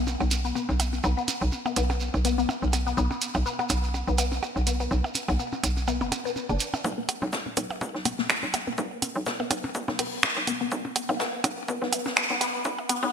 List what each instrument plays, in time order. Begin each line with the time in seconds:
Already playing: fm bass B1
0.07 percussion blips, shekere
0.20 fm bass B1, percussion blips, shekere
0.31 closed hi-hat, percussion blips, shekere
0.45 synth arpeggio sound B3, shekere
0.55 synth arpeggio sound B3, percussion blips, shekere
0.69 fm bass B1, percussion blips, shekere
0.80 closed hi-hat, percussion blips, shekere
0.93 percussion blips, shekere
1.03 fm bass B1, synth arpeggio sound B3, percussion blips, shekere
1.17 synth arpeggio sound B3, shekere
1.28 closed hi-hat, percussion blips, shekere
1.41 fm bass B1, percussion blips, shekere
1.52 percussion blips, shekere
1.66 synth arpeggio sound B3, percussion blips, shekere
1.76 fm bass B1, synth arpeggio sound B3, closed hi-hat, percussion blips, shekere
1.90 percussion blips, shekere
2.00 shekere
2.14 fm bass B1, percussion blips, shekere
2.25 synth arpeggio sound B3, closed hi-hat, percussion blips, shekere
2.38 synth arpeggio sound B3, shekere
2.49 percussion blips, shekere
2.62 fm bass B1, shekere
2.73 closed hi-hat, percussion blips, shekere
2.87 synth arpeggio sound B3, shekere
2.97 fm bass B1, synth arpeggio sound B3, shekere
3.11 percussion blips, shekere
3.22 closed hi-hat, shekere
3.34 fm bass B1, percussion blips, shekere
3.46 synth arpeggio sound B3, shekere
3.59 synth arpeggio sound B3, percussion blips, shekere
3.69 fm bass B1, closed hi-hat, percussion blips, shekere
3.83 shekere
3.94 percussion blips, shekere
4.08 fm bass B1, synth arpeggio sound B3, shekere
4.18 synth arpeggio sound B3, closed hi-hat, percussion blips, shekere
4.32 percussion blips, shekere
4.43 percussion blips, shekere
4.56 fm bass B1, percussion blips, shekere
4.67 synth arpeggio sound B3, closed hi-hat, shekere
4.80 synth arpeggio sound B3, percussion blips, shekere
4.91 fm bass B1, percussion blips, shekere
5.04 percussion blips, shekere
5.14 closed hi-hat, percussion blips, shekere
5.28 fm bass B1, synth arpeggio sound B3, percussion blips, shekere
5.39 synth arpeggio sound B3, shekere
5.52 percussion blips, shekere
5.64 fm bass B1, closed hi-hat, percussion blips, shekere
5.77 percussion blips, shekere
5.88 synth arpeggio sound B3, percussion blips, shekere
6.01 fm bass F#1, synth arpeggio sound B3, percussion blips, shekere
6.12 closed hi-hat, percussion blips, shekere
6.25 synth arpeggio sound B3, shekere
6.36 percussion blips, shekere
6.49 fm bass F#1, synth arpeggio sound D4, percussion blips, shekere
6.60 closed hi-hat, shekere
6.74 percussion blips, shekere
6.84 fm bass B1, synth arpeggio sound B3, kick, percussion blips, shaker
6.98 synth arpeggio sound B3
7.09 closed hi-hat, percussion blips, shaker
7.22 fm bass B1, percussion blips
7.32 kick, snare, shaker
7.46 synth arpeggio sound B3, percussion blips
7.57 fm bass B1, synth arpeggio sound B3, closed hi-hat, percussion blips, shaker
7.70 percussion blips
7.81 kick, percussion blips, shaker
7.95 fm bass B1, snare
8.05 synth arpeggio sound B3, closed hi-hat, percussion blips, shaker
8.18 synth arpeggio sound B3, snare
8.29 finger snap, kick, snare, shaker
8.43 fm bass B1, percussion blips
8.53 snare, closed hi-hat, percussion blips, shaker
8.67 synth arpeggio sound B3, percussion blips
8.78 fm bass B1, synth arpeggio sound B3, kick, shaker
9.02 closed hi-hat, percussion blips, shaker
9.16 fm bass B1
9.26 synth arpeggio sound B3, kick, snare, percussion blips, shaker
9.40 synth arpeggio sound B3, percussion blips
9.51 fm bass B1, closed hi-hat, percussion blips, shaker
9.64 percussion blips
9.75 kick, shaker
9.88 fm bass B1, synth arpeggio sound B3, snare, percussion blips
9.99 synth arpeggio sound B3, closed hi-hat, open hi-hat, percussion blips
10.23 finger snap, kick, snare, percussion blips, shaker
10.37 fm bass B1
10.47 synth arpeggio sound B3, closed hi-hat, percussion blips, shaker
10.61 synth arpeggio sound B3
10.71 fm bass B1, kick, shaker
10.85 percussion blips
10.96 closed hi-hat, percussion blips, shaker
11.09 fm bass B1, synth arpeggio sound B3, percussion blips
11.19 synth arpeggio sound B3, kick, snare, shaker
11.44 fm bass B1, closed hi-hat, percussion blips, shaker
11.68 synth arpeggio sound B3, kick, percussion blips, shaker
11.82 fm bass B1, synth arpeggio sound B3, snare
11.92 closed hi-hat, percussion blips, shaker
12.06 snare, percussion blips
12.16 finger snap, kick, snare, shaker
12.30 fm bass B1, synth arpeggio sound B3, percussion blips
12.41 synth arpeggio sound B3, snare, closed hi-hat, percussion blips, shaker
12.64 fm bass B1, kick, percussion blips, shaker
12.78 percussion blips
12.89 synth arpeggio sound B3, closed hi-hat, percussion blips, shaker
13.03 fm bass B1, synth arpeggio sound B3